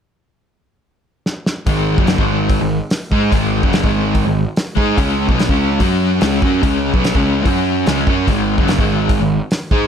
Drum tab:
HH |----------------|o---o---o---o---|o---o---o---o---|o---o---o---o---|
SD |------------o-o-|----o-------o---|----o-------o---|----o-------o---|
BD |----------------|o--o-o--o-----o-|o--o-o--o-----o-|o--o-o--o-----o-|

HH |o---o---o---o---|o---o---o---o---|
SD |----o-------o---|----o-------o---|
BD |o--o-o--o-----o-|o--o-o--o-----o-|